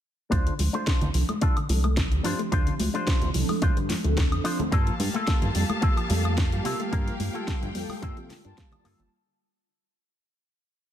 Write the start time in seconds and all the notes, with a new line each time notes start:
0.31 D2 C3 D4 F4 C5, kick, closed hi-hat
0.47 D3, closed hi-hat
0.59 D2 F3, open hi-hat, high conga
0.73 A3 D4 F4 C5, closed hi-hat
0.87 C3, kick, snare, closed hi-hat
1.01 D2 D3, closed hi-hat, low conga
1.14 C2 F3 C4 D4 A4, open hi-hat
1.29 A3, closed hi-hat, high conga, high woodblock
1.41 C3 D4 F4 A4, kick, closed hi-hat
1.57 D3, closed hi-hat, high woodblock
1.68 C2 F3 C4 D4 A4, muted clean electric guitar stroke, open hi-hat, high conga
1.84 A3, closed hi-hat, high woodblock
1.97 C3, kick, snare, closed hi-hat
2.11 D2 D3 F3 C4 D4 G4, closed hi-hat
2.24 G2 F3 D4 F4 C5, open hi-hat
2.39 A3, closed hi-hat
2.52 D2 C3 D4 F4 C5, kick, closed hi-hat
2.66 D3, closed hi-hat
2.79 D2 F3, open hi-hat, high conga
2.94 A3 D4 F4 C5, closed hi-hat
3.06 C3, kick, snare, closed hi-hat
3.22 D2 D3, closed hi-hat, low conga
3.34 C2 F3 C4 D4 A4, open hi-hat
3.49 A3, open hi-hat, high conga, high woodblock
3.62 D2 C3 D4 F4 C5, kick, closed hi-hat
3.77 G2 D3, closed hi-hat
3.89 F3, muted clean electric guitar stroke, snare, open hi-hat, high conga
4.04 D2 F3 A3 C4 D4 A4, closed hi-hat
4.17 C3, kick, snare, closed hi-hat
4.32 F2 D3, closed hi-hat, high woodblock
4.44 F3 D4 F4 C5, open hi-hat, high woodblock
4.59 A3, closed hi-hat, low conga
4.72 G2 D3 A#3 F4 G4 A4 F5 A5, kick, closed hi-hat
4.87 F3, closed hi-hat
5.00 G2 G3, open hi-hat, high conga
5.14 A3 A#3 F4 A4, closed hi-hat
5.27 D3, kick, snare, closed hi-hat
5.42 G2 F3, closed hi-hat, low conga
5.55 F2 G3 A#3 F4 A4, open hi-hat
5.69 A3, closed hi-hat, high conga, high woodblock
5.81 D3 A#3 F4 A4, kick, closed hi-hat
5.97 F3, closed hi-hat, high woodblock
6.09 F2 G3 A#3 F4 A4, muted clean electric guitar stroke, open hi-hat, high conga
6.25 A3, closed hi-hat, high woodblock
6.37 D3, kick, snare, closed hi-hat
6.51 G2 F3 G3 A#3 F4 G4, closed hi-hat
6.64 C3 G3 A#3 F4 A4, open hi-hat
6.80 A3, closed hi-hat
6.91 G2 D3 A#3 F4 A#4 G5, kick, closed hi-hat
7.08 F3, closed hi-hat
7.20 G2 G3, open hi-hat, high conga
7.33 A3 A#3 F4 A4, closed hi-hat
7.47 D3, kick, snare, closed hi-hat
7.62 G2 F3, closed hi-hat, low conga
7.74 F2 G3 A#3 F4 A4, open hi-hat
7.89 A3, open hi-hat, high conga, high woodblock
8.02 G2 D3 A#3 F4 A4, kick, closed hi-hat
8.17 C3 F3, closed hi-hat
8.29 D3, muted clean electric guitar stroke, snare, open hi-hat, high conga
8.44 G2 G3 A#3 D4 F4 A5, closed hi-hat
8.57 G3, kick, snare, closed hi-hat
8.72 G3, closed hi-hat, low conga, high woodblock
8.84 G2 D3 A#3 F4 A4, open hi-hat, high woodblock
8.99 G1 G3, closed hi-hat, low conga